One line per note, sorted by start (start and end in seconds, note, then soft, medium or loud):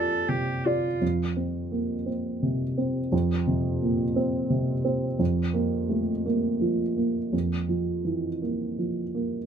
0.00 0.97 F2 soft
0.00 1.04 C4 soft
0.00 0.66 F4 soft
0.00 0.30 A4 soft
0.00 0.66 D5 soft
0.29 0.87 C3 soft
0.29 0.67 G4 soft
0.66 0.98 F4 soft
0.66 1.01 F4 soft
0.66 0.98 D5 soft
1.01 3.08 F2 soft
1.37 1.93 C4 soft
1.72 2.07 A#3 soft
2.06 2.63 C4 soft
2.42 2.98 C3 soft
2.78 3.33 C4 soft
3.12 5.16 F2 soft
3.47 4.03 C3 soft
3.82 4.16 A#2 soft
4.16 4.71 C4 soft
4.50 5.06 C3 soft
4.85 5.19 C4 soft
5.19 7.28 F2 soft
5.54 6.11 A#3 soft
5.89 6.25 A3 soft
6.25 6.82 A#3 soft
6.61 7.18 F3 soft
6.97 7.55 A#3 soft
7.33 9.46 F2 soft
7.69 8.27 F3 soft
8.05 8.42 E3 soft
8.42 9.01 A#3 soft
8.78 9.37 F3 soft
9.15 9.46 A#3 soft